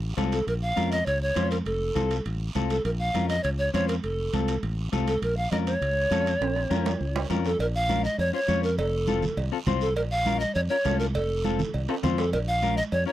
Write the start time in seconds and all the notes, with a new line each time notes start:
Already playing: A1
0.17 C2 C4 F4 A4, high conga, high timbale, low timbale, short guiro
0.32 A4, high timbale, short guiro
0.47 A#1 A#4, high conga, high timbale, long guiro
0.62 F5
0.76 F2 C#4 F4 A#4, high conga, high timbale, short guiro
0.92 D#5, high timbale, short guiro
1.06 C#2 C#5, high conga, high timbale, long guiro
1.22 C#5
1.35 F2 C#4 F4 C5, high conga, high timbale, low timbale, short guiro
1.51 A#4, high timbale, short guiro
1.66 F1 A4, high conga, high timbale, long guiro
1.95 C2 C4 F4 A4, high conga, high timbale, short guiro
2.11 high timbale, short guiro
2.25 A1, high conga, high timbale, long guiro
2.55 C2 C4 F4 A4, high conga, high timbale, short guiro
2.70 A4, high timbale, short guiro
2.85 A#1 A#4, high conga, high timbale, long guiro
2.99 F5
3.14 F2 C#4 F4 A#4, high conga, high timbale, short guiro
3.29 D#5, high timbale, short guiro
3.43 C#2 C#5, high conga, high timbale, long guiro
3.58 C#5
3.73 F2 C#4 F4 C5 C#5, high conga, high timbale, short guiro
3.88 A#4, high timbale, short guiro
4.03 F1 A4, high conga, high timbale, long guiro
4.33 C2 C4 F4 A4, high conga, high timbale, short guiro
4.48 high timbale, short guiro
4.63 A1, high conga, high timbale, long guiro
4.92 C2 C4 F4 A4, high conga, high timbale, short guiro
5.07 A4, high timbale, short guiro
5.22 A#1 A#4, high conga, high timbale, long guiro
5.37 F5
5.52 F2 C#4 F4 A#4 D#5, high conga, high timbale, short guiro
5.66 C#5, high timbale, short guiro
5.81 C#2, high conga, high timbale, long guiro
6.11 F2 C#4 F4 A4, high conga, high timbale, short guiro
6.26 high timbale, short guiro
6.41 A#1, high conga, high timbale, long guiro
6.56 high timbale
6.70 F2 C#4 F4 A#4, high conga, high timbale, short guiro
6.86 low timbale, short guiro
7.01 C#2, high conga, long guiro
7.16 low timbale
7.30 F2 C#4 F4 A#4, high conga, low timbale, short guiro
7.45 A4, low timbale, short guiro
7.59 A#1 A#4, cowbell, high conga, long guiro
7.75 F5
7.89 C#4 F4 A#4, high conga, short guiro
8.04 D#5, short guiro
8.18 F2 C#5, cowbell, high conga, long guiro
8.33 C#4 F4 C5 C#5
8.48 F2 C#4 F4 C#5, high conga, short guiro
8.63 A#4, short guiro
8.78 F1 A4, cowbell, high conga, long guiro
9.07 C4 F4 A4, high conga, short guiro
9.22 low conga, short guiro
9.37 C2, cowbell, high conga, long guiro
9.52 C4 F4 A4
9.66 C2 C4 F4 C5, high conga, low conga, low timbale, short guiro
9.81 A4, short guiro
9.96 A#1 A#4, cowbell, high conga, long guiro
10.11 F5
10.26 C#4 F4 A#4, high conga, short guiro
10.40 D#5, short guiro
10.55 F2 C#5, cowbell, high conga, long guiro
10.69 C#4 F4 A#4 C#5
10.85 C2 C#4 F4 A4, high conga, low timbale, short guiro
10.99 A#4, short guiro
11.14 F1 A4, cowbell, high conga, long guiro
11.44 C4 F4 A4, high conga, short guiro
11.59 low conga, short guiro
11.74 C2, cowbell, high conga, long guiro
11.89 C4 F4 A4, high timbale
12.03 F2 C4 F4 C5, high conga, low conga, low timbale, short guiro
12.18 A4, low timbale, short guiro
12.33 A#1 A#4, cowbell, high conga, long guiro
12.48 F5
12.62 C#4 F4 A#4, high conga, short guiro
12.77 D#5, short guiro
12.92 F2 C#5, cowbell, high conga, long guiro
13.06 C#4 F4 A#4 C#5